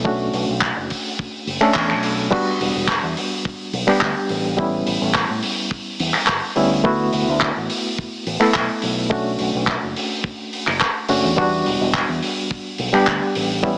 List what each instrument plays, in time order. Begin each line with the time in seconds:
Already playing: fingered electric bass B1
0.05 reed electric piano A3 C#4 D4 F#4, kick
0.33 fingered electric bass B1, open hi-hat
0.49 fingered electric bass B1
0.61 kick, clap
0.77 fingered electric bass F#1
0.90 kick, open hi-hat
1.19 kick
1.47 fingered electric bass F#1, open hi-hat
1.61 reed electric piano A3 C#4 D4 A4, finger snap, muted fingered electric bass stroke
1.74 fingered electric bass E2, kick, clap
1.90 fingered electric bass B1, finger snap
2.03 open hi-hat
2.31 reed electric piano G3 B3 D4 F#4, kick, crash
2.60 fingered electric bass E1, open hi-hat
2.75 fingered electric bass E1
2.88 kick, clap
3.03 fingered electric bass E2
3.17 open hi-hat
3.45 kick
3.73 fingered electric bass B1, open hi-hat
3.87 reed electric piano G3 B3 D4 G4, finger snap, muted fingered electric bass stroke
4.01 fingered electric bass D2, kick, clap
4.29 fingered electric bass A1, open hi-hat
4.57 reed electric piano G3 B3 C#4 E4, kick
4.87 fingered electric bass A1, open hi-hat
5.01 fingered electric bass A1
5.15 kick, clap
5.30 fingered electric bass A2
5.43 open hi-hat
5.71 kick
6.00 fingered electric bass E2, open hi-hat
6.14 finger snap, muted fingered electric bass stroke, clap
6.27 fingered electric bass G1, kick, clap
6.56 fingered electric bass D2, reed electric piano G3 B3 C#4 E4, open hi-hat
6.84 reed electric piano A3 B3 E4 F#4, kick
7.13 fingered electric bass D2, open hi-hat
7.28 fingered electric bass D2
7.41 kick, clap
7.56 fingered electric bass A1
7.70 open hi-hat
7.98 kick
8.26 fingered electric bass A1, open hi-hat
8.40 reed electric piano A3 B3 E4 A4, finger snap, muted fingered electric bass stroke
8.54 fingered electric bass B1, kick, clap
8.82 fingered electric bass B1, open hi-hat
9.10 reed electric piano A3 C#4 D4 F#4, kick
9.39 fingered electric bass B1, open hi-hat
9.54 fingered electric bass B1
9.67 kick, clap
9.83 fingered electric bass F#1
9.96 open hi-hat
10.24 kick
10.53 open hi-hat
10.67 fingered electric bass F#1, finger snap, clap
10.81 kick, clap
11.09 fingered electric bass F#1, reed electric piano A3 C#4 D4 F#4, open hi-hat
11.24 fingered electric bass E2
11.36 reed electric piano G3 B3 D4 F#4, kick
11.66 fingered electric bass E1, open hi-hat
11.81 fingered electric bass E1
11.94 kick, clap
12.09 fingered electric bass E2
12.22 open hi-hat
12.51 kick
12.78 fingered electric bass B1, open hi-hat
12.93 reed electric piano G3 B3 D4 G4, finger snap, muted fingered electric bass stroke
13.07 fingered electric bass D2, kick, clap
13.35 fingered electric bass A1, open hi-hat
13.63 reed electric piano G3 B3 C#4 E4, kick